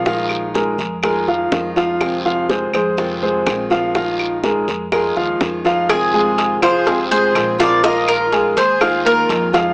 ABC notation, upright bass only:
X:1
M:4/4
L:1/8
Q:1/4=123
K:Fdor
V:1 name="Upright bass" clef=bass
B,,,3 F,,3 F,,2- | F,,3 F,,3 B,,,2- | B,,,3 F,,2 E,, F,,2- | F,,3 C,,3 B,,,2- |
B,,,3 E,,3 F,,2 |]